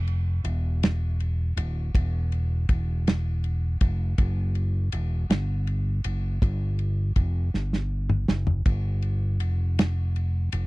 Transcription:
Already playing: F1
0.07 ride bell
0.44 E1, ride bell
0.83 snare, ride bell
1.20 ride bell
1.56 D#1, ride bell
1.95 E1, kick, ride bell
2.32 ride bell
2.69 E1, kick, ride bell
3.07 snare, ride bell
3.44 ride bell
3.81 F1, kick, ride bell
4.18 F#1, kick, ride bell
4.55 ride bell
4.92 E1, ride bell
5.29 G1, snare, ride bell
5.67 ride bell
6.04 F#1, ride bell
6.42 G1, kick, ride bell
6.79 ride bell
7.16 F1, kick, ride bell
7.54 G1, snare
7.73 snare
8.09 mid tom
8.28 F#1, snare
8.47 floor tom
8.66 G1, kick, ride bell
9.02 ride bell
9.40 F1, ride bell
9.79 snare, ride bell
10.16 ride bell
10.52 F1, ride bell

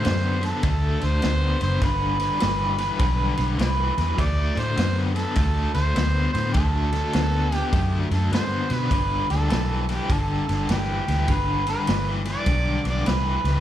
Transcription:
Already playing: C5
0.03 F#2 D3 B3, snare, ride
0.41 D3 B3, snare, ride
0.45 A4
0.63 D2 D3 A3, kick, snare, ride
1.00 D2 D3 A3 C5, snare, ride
1.22 D2 D3 B3, snare, ride
1.60 F#1 D3 B3 C5, snare, ride
1.81 G1 G2 D3 B4, kick, snare, ride
2.20 G2 D3, snare, ride
2.40 G1 G2 E3, snare, ride
2.78 G2 E3, snare, ride
2.99 B1 G2 D3, kick, snare, ride
3.37 B1 G2 D3, snare, ride
3.58 C2 G2 E3 B4, snare, ride
3.97 E2 G2 E3 B4, snare, ride
4.18 D2 D3 A3 D5, kick, snare, ride
4.55 A2 D3 A3, snare, ride
4.59 C5
4.77 F#2 D3 B3, snare, ride
5.15 D3 B3 A4, snare, ride
5.35 D2 D3 A3, kick, snare, ride
5.74 D2 D3 A3 C5, snare, ride
5.95 D2 D3 B3, snare, ride
6.33 A2 D3 B3 C5, snare, ride
6.53 D2 D3 A3 A4, kick, snare, ride
6.92 D3 A3, snare, ride
7.13 D2 D3 B3, snare, ride
7.52 D3 B3, snare, ride
7.56 G4
7.72 F#2 D3 A3, kick, snare, ride
8.11 F#2 D3 A3 A4, snare, ride
8.31 G2 D3 B3 C5, snare, ride
8.70 B2 D3 B3 B4, snare, ride
8.91 G1 G2 D3 B4, kick, snare, ride
9.30 D2 G2 D3 A4, snare, ride
9.50 B1 G2 E3, snare, ride
9.89 G2 E3 G4, snare, ride
10.10 G1 G2 D3 A4, kick, snare, ride
10.48 G1 G2 D3, snare, ride
10.69 G1 G2 E3 G4, snare, ride
11.08 D2 G2 E3, snare, ride
11.28 G1 G2 D3, kick, snare, ride
11.32 B4
11.67 G2 D3 B4, snare, ride
11.87 G1 G2 E3, snare, ride
12.25 G2 E3 D5, snare, ride
12.46 B1 G2 D3, kick, snare, ride
12.85 B1 G2 D3, snare, ride
12.89 D5
13.06 C2 G2 E3 B4, snare, ride
13.44 C#2 G2 E3, snare, ride

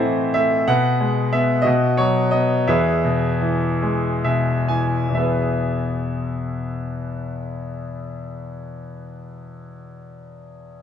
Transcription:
Already playing: A2 E3 A3 C4 E4 A4 C5 D#5 E5 F#5
0.04 E3
0.34 A3 E5
0.68 B2 B4 F#5
1.00 G#3
1.33 B3 E5
1.62 F#4 D#5
1.66 B2
1.97 F#3 C#5
2.31 B3 D#5
2.67 E2 G#4 B4 E5
3.04 B2
3.42 E3
3.82 G#3
4.24 B2 E5
4.68 E3 G#5
5.08 E2 B2
5.14 E3 B3 E5
5.19 G#4 B4

